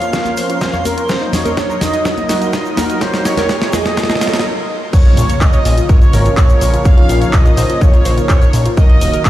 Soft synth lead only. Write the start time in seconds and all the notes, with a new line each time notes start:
Already playing: F5
0.62 F5
0.86 A#4
1.10 C5
1.34 C#5
1.82 D#5
2.54 D#5
2.78 A#4
3.02 C5
3.25 C#5
3.73 D#5
4.93 C#5
5.41 D#5
5.90 C#5
6.37 C#5
6.86 F5
7.34 D#5
7.81 C#5
8.29 C#5
8.78 D#5
9.26 F5